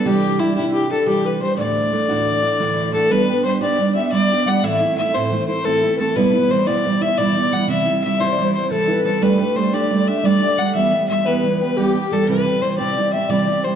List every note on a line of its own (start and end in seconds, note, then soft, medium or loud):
0.05 0.39 C3 medium
0.05 0.39 E3 medium
0.05 0.39 G3 medium
0.05 0.41 D4 medium
0.05 0.41 G4 medium
0.05 0.41 G4 loud
0.05 0.40 G4 medium
0.39 0.56 E3 soft
0.39 0.56 G3 medium
0.39 0.55 D4 medium
0.39 0.56 E4 medium
0.39 0.55 G4 medium
0.56 0.91 C3 medium
0.56 0.94 E3 medium
0.56 0.91 G3 medium
0.56 0.91 D4 medium
0.56 0.88 E4 medium
0.56 0.73 E4 medium
0.56 0.89 G4 medium
0.74 0.89 G4 medium
0.90 1.06 G3 soft
0.90 1.07 D4 soft
0.90 1.06 G4 soft
0.90 1.09 A4 medium
0.90 1.06 A4 medium
1.06 1.41 C3 medium
1.06 1.38 E3 medium
1.06 1.40 G3 medium
1.06 1.42 D4 medium
1.06 1.27 G4 medium
1.06 1.28 G4 medium
1.06 1.42 G4 medium
1.25 1.43 B4 medium
1.25 1.42 B4 medium
1.40 1.56 E3 medium
1.40 1.57 G3 medium
1.40 1.57 D4 medium
1.40 1.58 G4 soft
1.40 1.57 C5 medium
1.56 1.91 D2 medium
1.56 1.92 A2 medium
1.56 1.90 E3 medium
1.56 1.91 A3 medium
1.56 1.93 D4 medium
1.56 1.92 F#4 medium
1.56 2.90 D5 medium
1.56 2.91 D5 loud
1.91 2.08 E3 soft
1.91 2.08 A3 medium
1.91 2.08 D4 medium
1.91 2.07 F#4 soft
2.09 2.44 D2 medium
2.09 2.44 A2 medium
2.09 2.44 E3 medium
2.09 2.43 A3 medium
2.09 2.43 D4 medium
2.09 2.41 F#4 medium
2.42 2.58 E3 soft
2.42 2.59 A3 soft
2.42 2.59 D4 soft
2.42 2.59 F#4 soft
2.59 2.94 D2 medium
2.59 2.94 A2 medium
2.59 2.92 E3 medium
2.59 2.93 A3 medium
2.59 2.94 D4 medium
2.59 2.95 F#4 medium
2.93 3.10 E3 medium
2.93 3.10 A3 medium
2.93 3.11 D4 medium
2.93 3.11 F#4 medium
2.93 3.12 A4 medium
2.93 3.11 A4 medium
3.10 3.28 G3 medium
3.10 3.29 B3 medium
3.10 3.28 D4 medium
3.10 3.27 G4 medium
3.10 3.46 B4 medium
3.10 3.44 B4 loud
3.28 3.44 B3 soft
3.28 3.45 D4 soft
3.28 3.45 G4 medium
3.44 3.61 G3 soft
3.44 3.62 B3 soft
3.44 3.61 D4 medium
3.44 3.60 G4 medium
3.44 3.61 C5 medium
3.44 3.60 C5 medium
3.61 3.77 G3 soft
3.61 3.79 B3 medium
3.61 3.79 D4 medium
3.61 3.79 G4 medium
3.61 3.78 D5 medium
3.61 3.94 D5 medium
3.78 3.95 G3 soft
3.78 3.96 B3 medium
3.78 3.96 D4 medium
3.78 3.95 G4 medium
3.78 3.95 D5 medium
3.95 4.12 B3 soft
3.95 4.13 D4 soft
3.95 4.12 G4 soft
3.95 4.11 E5 medium
3.95 4.14 E5 medium
4.12 4.30 G3 medium
4.12 4.31 B3 medium
4.12 4.31 D4 medium
4.12 4.29 G4 medium
4.12 4.49 D5 loud
4.12 4.48 D5 medium
4.30 4.46 B3 soft
4.30 4.47 D4 soft
4.30 4.47 G4 medium
4.46 4.63 G3 medium
4.46 4.63 B3 medium
4.46 4.64 D4 medium
4.46 4.64 G4 medium
4.46 4.65 F#5 medium
4.46 4.66 F#5 medium
4.62 4.81 A2 medium
4.62 4.81 E3 medium
4.62 4.82 A3 medium
4.62 4.81 C4 medium
4.62 4.79 E4 medium
4.62 4.97 E5 medium
4.62 4.97 E5 loud
4.80 4.97 A3 soft
4.80 4.98 C4 medium
4.80 4.97 E4 medium
4.97 5.14 E3 soft
4.97 5.13 A3 soft
4.97 5.13 C4 medium
4.97 5.12 E4 medium
4.97 5.16 E5 medium
4.97 5.16 E5 loud
5.13 5.33 A2 medium
5.13 5.30 E3 soft
5.13 5.31 A3 medium
5.13 5.32 C4 medium
5.13 5.32 E4 medium
5.13 5.47 C5 medium
5.13 5.48 C5 medium
5.31 5.48 E3 medium
5.31 5.49 A3 medium
5.31 5.48 C4 medium
5.31 5.47 E4 medium
5.48 5.65 A3 soft
5.48 5.65 C4 soft
5.48 5.65 E4 soft
5.48 5.67 C5 medium
5.48 5.66 C5 medium
5.64 5.83 A2 medium
5.64 5.83 E3 medium
5.64 5.83 A3 medium
5.64 5.83 C4 medium
5.64 5.81 E4 medium
5.64 5.95 A4 medium
5.64 5.99 A4 loud
5.82 5.98 A3 soft
5.82 6.00 C4 medium
5.82 5.99 E4 soft
5.96 6.15 E3 medium
5.96 6.16 A3 medium
5.96 6.18 A4 medium
5.96 6.02 B4 medium
6.00 6.17 C4 medium
6.00 6.16 E4 medium
6.00 6.17 A4 medium
6.15 6.34 B2 medium
6.15 6.34 E3 medium
6.15 6.34 G3 medium
6.15 6.34 B3 medium
6.15 6.32 E4 medium
6.15 6.52 B4 medium
6.33 6.50 G3 soft
6.33 6.51 B3 soft
6.33 6.50 E4 medium
6.50 6.67 E3 medium
6.50 6.67 G3 medium
6.50 6.66 B3 medium
6.50 6.65 E4 medium
6.50 6.68 C5 medium
6.50 6.69 C5 medium
6.66 6.86 B2 soft
6.66 6.83 E3 medium
6.66 6.84 G3 medium
6.66 6.85 B3 medium
6.66 6.85 E4 medium
6.66 7.04 D5 medium
6.66 7.03 D5 medium
6.85 7.01 E3 medium
6.85 7.02 G3 medium
6.85 7.02 B3 soft
6.85 7.00 E4 medium
7.01 7.18 G3 soft
7.01 7.18 B3 soft
7.01 7.18 E4 medium
7.01 7.20 E5 medium
7.01 7.19 E5 medium
7.18 7.36 B2 medium
7.18 7.36 E3 medium
7.18 7.36 G3 medium
7.18 7.36 B3 medium
7.18 7.34 E4 medium
7.18 7.54 D5 loud
7.18 7.46 D5 medium
7.36 7.51 G3 soft
7.36 7.52 B3 medium
7.36 7.52 E4 medium
7.51 7.67 E3 soft
7.51 7.68 G3 medium
7.51 7.69 B3 medium
7.51 7.69 E4 medium
7.51 7.69 F#5 loud
7.67 7.86 C3 medium
7.67 7.87 E3 medium
7.67 7.87 G3 medium
7.67 7.86 C4 medium
7.67 7.84 E4 medium
7.67 8.01 E5 medium
7.67 8.01 E5 loud
7.85 8.03 G3 soft
7.85 8.03 C4 medium
7.85 8.03 E4 medium
8.03 8.20 E3 soft
8.03 8.20 G3 medium
8.03 8.19 C4 medium
8.03 8.19 E4 medium
8.03 8.22 E5 medium
8.20 8.39 C3 soft
8.20 8.36 E3 medium
8.20 8.37 G3 medium
8.20 8.38 C4 medium
8.20 8.38 E4 medium
8.20 8.34 C5 medium
8.20 8.54 C5 medium
8.32 8.46 D5 medium
8.37 8.54 E3 medium
8.37 8.54 G3 medium
8.37 8.55 C4 medium
8.37 8.53 E4 medium
8.44 8.54 C5 medium
8.55 8.70 G3 soft
8.55 8.71 C4 soft
8.55 8.71 E4 soft
8.55 8.70 C5 medium
8.55 8.73 C5 medium
8.70 8.88 C3 medium
8.70 8.89 E3 medium
8.70 8.89 G3 medium
8.70 8.88 C4 medium
8.70 8.87 E4 medium
8.70 9.03 A4 medium
8.70 8.91 A4 medium
8.88 9.04 G3 soft
8.88 9.06 C4 medium
8.88 9.05 E4 medium
8.88 9.21 B4 medium
9.04 9.21 E3 soft
9.04 9.20 G3 medium
9.04 9.22 C4 medium
9.04 9.23 E4 medium
9.04 9.24 A4 medium
9.21 9.40 G3 medium
9.21 9.40 A3 medium
9.21 9.39 D4 medium
9.21 9.38 G4 medium
9.21 9.54 B4 medium
9.21 9.58 B4 medium
9.39 9.55 A3 soft
9.39 9.56 D4 soft
9.39 9.56 G4 soft
9.55 9.72 G3 soft
9.55 9.73 A3 medium
9.55 9.72 D4 soft
9.55 9.72 G4 medium
9.55 9.75 C5 medium
9.73 9.89 G3 medium
9.73 9.91 A3 medium
9.73 9.91 D4 medium
9.73 9.91 G4 medium
9.73 10.09 D5 medium
9.73 10.06 D5 medium
9.90 10.07 G3 soft
9.90 10.08 A3 medium
9.90 10.08 D4 medium
9.90 10.06 G4 medium
10.07 10.24 A3 soft
10.07 10.24 D4 soft
10.07 10.24 G4 soft
10.07 10.25 E5 medium
10.07 10.26 E5 medium
10.24 10.42 G3 medium
10.24 10.42 A3 medium
10.24 10.42 D4 medium
10.24 10.40 G4 medium
10.24 10.60 D5 medium
10.24 10.60 D5 loud
10.42 10.58 A3 soft
10.42 10.59 D4 medium
10.42 10.58 G4 medium
10.58 10.74 G3 medium
10.58 10.75 A3 medium
10.58 10.75 D4 medium
10.58 10.76 G4 medium
10.58 10.74 F#5 medium
10.58 10.77 F#5 medium
10.74 10.93 E3 medium
10.74 10.93 G3 medium
10.74 10.92 B3 medium
10.74 10.90 G4 medium
10.74 11.07 E5 medium
10.74 11.09 E5 medium
10.91 11.09 G3 soft
10.91 11.10 B3 soft
10.91 11.09 G4 soft
11.09 11.26 E3 medium
11.09 11.26 G3 medium
11.09 11.25 B3 soft
11.09 11.25 G4 medium
11.09 11.27 E5 medium
11.09 11.28 E5 medium
11.25 11.42 E3 medium
11.25 11.43 G3 soft
11.25 11.44 B3 medium
11.25 11.44 G4 medium
11.25 11.78 B4 medium
11.25 11.60 B4 medium
11.43 11.60 E3 medium
11.43 11.61 G3 medium
11.43 11.61 B3 medium
11.43 11.59 G4 medium
11.61 11.77 G3 soft
11.61 11.78 B3 soft
11.61 11.77 G4 soft
11.61 11.79 B4 medium
11.77 11.95 E3 medium
11.77 11.96 G3 medium
11.77 11.96 B3 medium
11.77 12.13 G4 medium
11.77 12.14 G4 medium
11.77 11.94 G4 medium
11.95 12.11 G3 soft
11.95 12.12 B3 soft
11.95 12.11 G4 medium
12.11 12.27 E3 medium
12.11 12.28 G3 medium
12.11 12.29 B3 medium
12.11 12.29 G4 medium
12.11 12.28 A4 medium
12.11 12.29 A4 medium
12.27 12.46 C3 medium
12.27 12.46 E3 medium
12.27 12.47 G3 medium
12.27 12.46 C4 medium
12.27 12.44 G4 medium
12.27 12.63 B4 medium
12.46 12.62 G3 soft
12.46 12.63 C4 soft
12.46 12.62 G4 medium
12.62 12.78 E3 medium
12.62 12.79 G3 medium
12.62 12.78 C4 medium
12.62 12.77 G4 medium
12.62 12.78 C5 medium
12.62 12.80 C5 medium
12.78 12.98 C3 medium
12.78 12.96 E3 soft
12.78 12.97 G3 medium
12.78 12.97 C4 medium
12.78 12.97 G4 medium
12.78 13.11 D5 medium
12.78 13.15 D5 medium
12.97 13.13 E3 medium
12.97 13.14 G3 medium
12.97 13.13 C4 medium
12.97 13.12 G4 medium
13.13 13.28 G3 soft
13.13 13.29 C4 soft
13.13 13.29 G4 soft
13.13 13.31 E5 medium
13.13 13.30 E5 medium
13.29 13.47 C3 medium
13.29 13.48 E3 medium
13.29 13.48 G3 medium
13.29 13.48 C4 medium
13.29 13.46 G4 medium
13.29 13.63 D5 medium
13.29 13.66 D5 medium
13.47 13.63 G3 soft
13.47 13.64 C4 soft
13.47 13.64 G4 medium
13.63 13.75 E3 soft
13.63 13.75 G3 medium
13.63 13.75 C4 medium
13.63 13.75 G4 medium
13.63 13.75 C5 medium